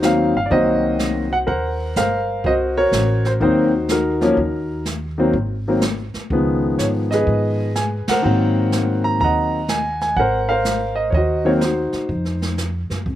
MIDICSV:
0, 0, Header, 1, 5, 480
1, 0, Start_track
1, 0, Tempo, 482703
1, 508, Time_signature, 4, 2, 24, 8
1, 13082, End_track
2, 0, Start_track
2, 0, Title_t, "Grand piano"
2, 0, Program_c, 0, 0
2, 0, Note_on_c, 0, 63, 57
2, 0, Note_on_c, 0, 66, 60
2, 22, Note_on_c, 0, 51, 59
2, 24, Note_on_c, 0, 54, 53
2, 27, Note_on_c, 0, 58, 53
2, 39, Note_on_c, 0, 60, 60
2, 49, Note_on_c, 0, 77, 80
2, 315, Note_off_c, 0, 51, 0
2, 316, Note_off_c, 0, 54, 0
2, 317, Note_off_c, 0, 58, 0
2, 323, Note_off_c, 0, 60, 0
2, 327, Note_off_c, 0, 63, 0
2, 330, Note_off_c, 0, 66, 0
2, 338, Note_off_c, 0, 77, 0
2, 365, Note_on_c, 0, 77, 78
2, 455, Note_on_c, 0, 74, 59
2, 463, Note_off_c, 0, 77, 0
2, 500, Note_on_c, 0, 51, 58
2, 504, Note_on_c, 0, 54, 51
2, 504, Note_on_c, 0, 58, 54
2, 505, Note_off_c, 0, 74, 0
2, 511, Note_on_c, 0, 60, 64
2, 513, Note_on_c, 0, 75, 90
2, 515, Note_on_c, 0, 72, 62
2, 521, Note_on_c, 0, 66, 66
2, 1242, Note_off_c, 0, 51, 0
2, 1244, Note_off_c, 0, 54, 0
2, 1244, Note_off_c, 0, 58, 0
2, 1247, Note_off_c, 0, 60, 0
2, 1319, Note_on_c, 0, 78, 94
2, 1336, Note_off_c, 0, 75, 0
2, 1368, Note_off_c, 0, 78, 0
2, 1432, Note_off_c, 0, 72, 0
2, 1435, Note_off_c, 0, 66, 0
2, 1459, Note_on_c, 0, 70, 64
2, 1462, Note_on_c, 0, 72, 65
2, 1468, Note_on_c, 0, 78, 89
2, 1942, Note_off_c, 0, 72, 0
2, 1952, Note_off_c, 0, 70, 0
2, 1957, Note_on_c, 0, 72, 60
2, 1959, Note_on_c, 0, 77, 85
2, 1963, Note_off_c, 0, 78, 0
2, 1967, Note_on_c, 0, 70, 61
2, 2428, Note_off_c, 0, 72, 0
2, 2443, Note_on_c, 0, 72, 64
2, 2449, Note_off_c, 0, 77, 0
2, 2450, Note_on_c, 0, 75, 89
2, 2451, Note_on_c, 0, 66, 67
2, 2520, Note_off_c, 0, 75, 0
2, 2745, Note_off_c, 0, 70, 0
2, 2751, Note_off_c, 0, 66, 0
2, 2759, Note_on_c, 0, 73, 98
2, 2760, Note_on_c, 0, 70, 60
2, 2766, Note_on_c, 0, 66, 57
2, 3231, Note_off_c, 0, 72, 0
2, 3245, Note_on_c, 0, 72, 77
2, 3250, Note_off_c, 0, 73, 0
2, 3295, Note_off_c, 0, 72, 0
2, 3384, Note_on_c, 0, 51, 63
2, 3387, Note_off_c, 0, 66, 0
2, 3393, Note_on_c, 0, 54, 55
2, 3400, Note_on_c, 0, 58, 57
2, 3402, Note_on_c, 0, 66, 53
2, 3402, Note_on_c, 0, 72, 72
2, 3403, Note_on_c, 0, 60, 73
2, 3405, Note_on_c, 0, 63, 56
2, 3676, Note_off_c, 0, 51, 0
2, 3676, Note_off_c, 0, 70, 0
2, 3681, Note_off_c, 0, 54, 0
2, 3684, Note_off_c, 0, 58, 0
2, 3686, Note_off_c, 0, 60, 0
2, 3872, Note_off_c, 0, 63, 0
2, 3873, Note_off_c, 0, 66, 0
2, 3887, Note_on_c, 0, 63, 47
2, 3888, Note_on_c, 0, 66, 47
2, 3890, Note_off_c, 0, 72, 0
2, 3894, Note_on_c, 0, 70, 62
2, 4188, Note_on_c, 0, 53, 67
2, 4191, Note_on_c, 0, 54, 65
2, 4202, Note_on_c, 0, 58, 66
2, 4203, Note_on_c, 0, 61, 78
2, 4332, Note_off_c, 0, 53, 0
2, 4334, Note_off_c, 0, 54, 0
2, 4339, Note_off_c, 0, 58, 0
2, 4340, Note_off_c, 0, 61, 0
2, 4799, Note_off_c, 0, 63, 0
2, 4799, Note_off_c, 0, 66, 0
2, 4802, Note_off_c, 0, 70, 0
2, 5150, Note_on_c, 0, 51, 60
2, 5162, Note_on_c, 0, 54, 60
2, 5165, Note_on_c, 0, 58, 55
2, 5167, Note_on_c, 0, 60, 70
2, 5293, Note_off_c, 0, 51, 0
2, 5299, Note_off_c, 0, 54, 0
2, 5301, Note_off_c, 0, 58, 0
2, 5302, Note_off_c, 0, 60, 0
2, 5647, Note_on_c, 0, 51, 55
2, 5649, Note_on_c, 0, 54, 50
2, 5653, Note_on_c, 0, 58, 54
2, 5663, Note_on_c, 0, 60, 63
2, 5781, Note_off_c, 0, 51, 0
2, 5783, Note_off_c, 0, 54, 0
2, 5785, Note_off_c, 0, 58, 0
2, 5789, Note_off_c, 0, 60, 0
2, 6282, Note_on_c, 0, 51, 52
2, 6286, Note_on_c, 0, 53, 49
2, 6291, Note_on_c, 0, 56, 50
2, 6294, Note_on_c, 0, 59, 62
2, 6748, Note_on_c, 0, 73, 70
2, 6820, Note_off_c, 0, 73, 0
2, 7067, Note_on_c, 0, 75, 82
2, 7095, Note_on_c, 0, 68, 63
2, 7099, Note_on_c, 0, 71, 59
2, 7620, Note_off_c, 0, 51, 0
2, 7622, Note_off_c, 0, 53, 0
2, 7625, Note_off_c, 0, 56, 0
2, 7626, Note_off_c, 0, 59, 0
2, 7667, Note_off_c, 0, 75, 0
2, 7713, Note_on_c, 0, 80, 78
2, 7785, Note_off_c, 0, 80, 0
2, 8003, Note_off_c, 0, 68, 0
2, 8005, Note_off_c, 0, 71, 0
2, 8049, Note_on_c, 0, 78, 86
2, 8064, Note_on_c, 0, 72, 60
2, 8066, Note_on_c, 0, 70, 63
2, 8176, Note_on_c, 0, 51, 59
2, 8184, Note_on_c, 0, 54, 51
2, 8187, Note_on_c, 0, 58, 54
2, 8196, Note_on_c, 0, 60, 67
2, 8959, Note_off_c, 0, 78, 0
2, 8967, Note_off_c, 0, 72, 0
2, 8968, Note_off_c, 0, 70, 0
2, 8992, Note_on_c, 0, 82, 89
2, 9141, Note_off_c, 0, 82, 0
2, 9156, Note_on_c, 0, 82, 92
2, 9188, Note_on_c, 0, 78, 63
2, 9191, Note_on_c, 0, 75, 65
2, 9527, Note_off_c, 0, 51, 0
2, 9531, Note_off_c, 0, 54, 0
2, 9532, Note_off_c, 0, 58, 0
2, 9536, Note_off_c, 0, 60, 0
2, 9641, Note_on_c, 0, 80, 83
2, 9646, Note_off_c, 0, 82, 0
2, 9934, Note_off_c, 0, 80, 0
2, 9961, Note_on_c, 0, 80, 83
2, 10088, Note_off_c, 0, 78, 0
2, 10089, Note_off_c, 0, 75, 0
2, 10109, Note_on_c, 0, 78, 89
2, 10118, Note_off_c, 0, 80, 0
2, 10137, Note_on_c, 0, 70, 65
2, 10141, Note_on_c, 0, 72, 69
2, 10428, Note_on_c, 0, 77, 87
2, 10432, Note_off_c, 0, 70, 0
2, 10436, Note_off_c, 0, 72, 0
2, 10440, Note_off_c, 0, 78, 0
2, 10447, Note_on_c, 0, 70, 66
2, 10451, Note_on_c, 0, 72, 66
2, 10875, Note_off_c, 0, 77, 0
2, 10894, Note_on_c, 0, 75, 81
2, 11011, Note_off_c, 0, 75, 0
2, 11041, Note_on_c, 0, 73, 61
2, 11074, Note_off_c, 0, 73, 0
2, 11081, Note_on_c, 0, 75, 80
2, 11097, Note_off_c, 0, 72, 0
2, 11106, Note_on_c, 0, 66, 57
2, 11112, Note_on_c, 0, 72, 54
2, 11357, Note_off_c, 0, 70, 0
2, 11373, Note_off_c, 0, 75, 0
2, 11383, Note_on_c, 0, 51, 61
2, 11389, Note_on_c, 0, 54, 56
2, 11394, Note_on_c, 0, 73, 77
2, 11395, Note_on_c, 0, 60, 71
2, 11396, Note_on_c, 0, 58, 60
2, 11443, Note_off_c, 0, 73, 0
2, 11528, Note_off_c, 0, 51, 0
2, 11529, Note_off_c, 0, 72, 0
2, 11531, Note_off_c, 0, 54, 0
2, 11534, Note_off_c, 0, 60, 0
2, 11535, Note_off_c, 0, 58, 0
2, 11544, Note_on_c, 0, 72, 63
2, 11555, Note_off_c, 0, 66, 0
2, 11565, Note_on_c, 0, 63, 46
2, 11570, Note_on_c, 0, 66, 45
2, 12005, Note_off_c, 0, 66, 0
2, 12464, Note_off_c, 0, 72, 0
2, 12475, Note_off_c, 0, 63, 0
2, 13082, End_track
3, 0, Start_track
3, 0, Title_t, "Upright bass"
3, 0, Program_c, 1, 32
3, 0, Note_on_c, 1, 39, 79
3, 307, Note_off_c, 1, 39, 0
3, 343, Note_on_c, 1, 31, 63
3, 493, Note_off_c, 1, 31, 0
3, 505, Note_on_c, 1, 36, 82
3, 1427, Note_off_c, 1, 36, 0
3, 1464, Note_on_c, 1, 39, 85
3, 1913, Note_off_c, 1, 39, 0
3, 1949, Note_on_c, 1, 31, 69
3, 2396, Note_off_c, 1, 31, 0
3, 2432, Note_on_c, 1, 36, 83
3, 2877, Note_off_c, 1, 36, 0
3, 2898, Note_on_c, 1, 33, 72
3, 3350, Note_off_c, 1, 33, 0
3, 3391, Note_on_c, 1, 39, 84
3, 4310, Note_off_c, 1, 39, 0
3, 4347, Note_on_c, 1, 39, 82
3, 5269, Note_off_c, 1, 39, 0
3, 5309, Note_on_c, 1, 32, 76
3, 6071, Note_off_c, 1, 32, 0
3, 6268, Note_on_c, 1, 37, 81
3, 6715, Note_off_c, 1, 37, 0
3, 6749, Note_on_c, 1, 44, 72
3, 7196, Note_off_c, 1, 44, 0
3, 7227, Note_on_c, 1, 44, 79
3, 7990, Note_off_c, 1, 44, 0
3, 8201, Note_on_c, 1, 44, 84
3, 9114, Note_off_c, 1, 44, 0
3, 9154, Note_on_c, 1, 39, 80
3, 10071, Note_off_c, 1, 39, 0
3, 10106, Note_on_c, 1, 32, 84
3, 11027, Note_off_c, 1, 32, 0
3, 11058, Note_on_c, 1, 39, 79
3, 11824, Note_off_c, 1, 39, 0
3, 12026, Note_on_c, 1, 41, 79
3, 12787, Note_off_c, 1, 41, 0
3, 12827, Note_on_c, 1, 42, 62
3, 12974, Note_off_c, 1, 42, 0
3, 12986, Note_on_c, 1, 36, 83
3, 13082, Note_off_c, 1, 36, 0
3, 13082, End_track
4, 0, Start_track
4, 0, Title_t, "Muted upright bass strokes"
4, 6116, Note_on_c, 9, 29, 31
4, 6215, Note_off_c, 9, 29, 0
4, 8040, Note_on_c, 9, 29, 35
4, 8140, Note_off_c, 9, 29, 0
4, 11859, Note_on_c, 9, 29, 37
4, 11959, Note_off_c, 9, 29, 0
4, 13082, End_track
5, 0, Start_track
5, 0, Title_t, "Drums"
5, 24, Note_on_c, 9, 38, 53
5, 26, Note_on_c, 9, 44, 56
5, 123, Note_off_c, 9, 38, 0
5, 125, Note_off_c, 9, 44, 0
5, 506, Note_on_c, 9, 25, 40
5, 506, Note_on_c, 9, 36, 32
5, 606, Note_off_c, 9, 36, 0
5, 985, Note_on_c, 9, 38, 55
5, 987, Note_on_c, 9, 44, 50
5, 1084, Note_off_c, 9, 38, 0
5, 1086, Note_off_c, 9, 44, 0
5, 1468, Note_off_c, 9, 25, 0
5, 1468, Note_on_c, 9, 25, 51
5, 1468, Note_on_c, 9, 36, 32
5, 1567, Note_off_c, 9, 36, 0
5, 1949, Note_on_c, 9, 38, 56
5, 1951, Note_on_c, 9, 44, 56
5, 2048, Note_off_c, 9, 38, 0
5, 2050, Note_off_c, 9, 44, 0
5, 2428, Note_on_c, 9, 36, 31
5, 2430, Note_off_c, 9, 25, 0
5, 2430, Note_on_c, 9, 25, 49
5, 2528, Note_off_c, 9, 36, 0
5, 2907, Note_on_c, 9, 38, 54
5, 2909, Note_on_c, 9, 44, 55
5, 3007, Note_off_c, 9, 38, 0
5, 3009, Note_off_c, 9, 44, 0
5, 3229, Note_on_c, 9, 38, 37
5, 3329, Note_off_c, 9, 38, 0
5, 3388, Note_on_c, 9, 36, 31
5, 3389, Note_off_c, 9, 25, 0
5, 3389, Note_on_c, 9, 25, 45
5, 3488, Note_off_c, 9, 36, 0
5, 3865, Note_on_c, 9, 38, 54
5, 3867, Note_on_c, 9, 44, 53
5, 3965, Note_off_c, 9, 38, 0
5, 3967, Note_off_c, 9, 44, 0
5, 4188, Note_on_c, 9, 38, 36
5, 4287, Note_off_c, 9, 38, 0
5, 4347, Note_on_c, 9, 36, 30
5, 4350, Note_off_c, 9, 25, 0
5, 4350, Note_on_c, 9, 25, 45
5, 4446, Note_off_c, 9, 36, 0
5, 4826, Note_on_c, 9, 38, 54
5, 4828, Note_on_c, 9, 44, 48
5, 4926, Note_off_c, 9, 38, 0
5, 4928, Note_off_c, 9, 44, 0
5, 5299, Note_off_c, 9, 25, 0
5, 5299, Note_on_c, 9, 25, 45
5, 5306, Note_on_c, 9, 36, 31
5, 5405, Note_off_c, 9, 36, 0
5, 5781, Note_on_c, 9, 38, 55
5, 5783, Note_on_c, 9, 44, 57
5, 5881, Note_off_c, 9, 38, 0
5, 5883, Note_off_c, 9, 44, 0
5, 6104, Note_on_c, 9, 38, 32
5, 6204, Note_off_c, 9, 38, 0
5, 6265, Note_off_c, 9, 25, 0
5, 6265, Note_on_c, 9, 25, 48
5, 6268, Note_on_c, 9, 36, 30
5, 6367, Note_off_c, 9, 36, 0
5, 6750, Note_on_c, 9, 38, 54
5, 6752, Note_on_c, 9, 44, 50
5, 6849, Note_off_c, 9, 38, 0
5, 6851, Note_off_c, 9, 44, 0
5, 7074, Note_on_c, 9, 38, 36
5, 7174, Note_off_c, 9, 38, 0
5, 7226, Note_off_c, 9, 25, 0
5, 7226, Note_on_c, 9, 25, 49
5, 7229, Note_on_c, 9, 36, 32
5, 7328, Note_off_c, 9, 36, 0
5, 7711, Note_on_c, 9, 38, 55
5, 7713, Note_on_c, 9, 44, 49
5, 7810, Note_off_c, 9, 38, 0
5, 7812, Note_off_c, 9, 44, 0
5, 8031, Note_on_c, 9, 38, 70
5, 8033, Note_on_c, 9, 51, 60
5, 8130, Note_off_c, 9, 38, 0
5, 8132, Note_off_c, 9, 51, 0
5, 8191, Note_off_c, 9, 25, 0
5, 8191, Note_on_c, 9, 25, 44
5, 8671, Note_on_c, 9, 38, 51
5, 8673, Note_on_c, 9, 44, 46
5, 8771, Note_off_c, 9, 38, 0
5, 8773, Note_off_c, 9, 44, 0
5, 9151, Note_on_c, 9, 36, 32
5, 9152, Note_off_c, 9, 25, 0
5, 9152, Note_on_c, 9, 25, 40
5, 9250, Note_off_c, 9, 36, 0
5, 9629, Note_on_c, 9, 38, 56
5, 9631, Note_on_c, 9, 44, 55
5, 9728, Note_off_c, 9, 38, 0
5, 9730, Note_off_c, 9, 44, 0
5, 9955, Note_on_c, 9, 38, 36
5, 10054, Note_off_c, 9, 38, 0
5, 10106, Note_off_c, 9, 25, 0
5, 10106, Note_on_c, 9, 25, 48
5, 10108, Note_on_c, 9, 36, 31
5, 10207, Note_off_c, 9, 36, 0
5, 10588, Note_on_c, 9, 38, 54
5, 10590, Note_on_c, 9, 44, 52
5, 10688, Note_off_c, 9, 38, 0
5, 10690, Note_off_c, 9, 44, 0
5, 11061, Note_off_c, 9, 25, 0
5, 11061, Note_on_c, 9, 25, 42
5, 11063, Note_on_c, 9, 36, 31
5, 11163, Note_off_c, 9, 36, 0
5, 11546, Note_on_c, 9, 38, 55
5, 11548, Note_on_c, 9, 44, 54
5, 11645, Note_off_c, 9, 38, 0
5, 11647, Note_off_c, 9, 44, 0
5, 11859, Note_on_c, 9, 38, 36
5, 11958, Note_off_c, 9, 38, 0
5, 12021, Note_off_c, 9, 25, 0
5, 12021, Note_on_c, 9, 25, 42
5, 12022, Note_on_c, 9, 36, 32
5, 12122, Note_off_c, 9, 36, 0
5, 12182, Note_on_c, 9, 38, 27
5, 12281, Note_off_c, 9, 38, 0
5, 12349, Note_on_c, 9, 38, 41
5, 12449, Note_off_c, 9, 38, 0
5, 12508, Note_on_c, 9, 38, 57
5, 12510, Note_on_c, 9, 44, 59
5, 12607, Note_off_c, 9, 38, 0
5, 12609, Note_off_c, 9, 44, 0
5, 12829, Note_on_c, 9, 38, 36
5, 12929, Note_off_c, 9, 38, 0
5, 12986, Note_on_c, 9, 36, 31
5, 12989, Note_off_c, 9, 25, 0
5, 12989, Note_on_c, 9, 25, 45
5, 13082, Note_off_c, 9, 25, 0
5, 13082, Note_off_c, 9, 36, 0
5, 13082, End_track
0, 0, End_of_file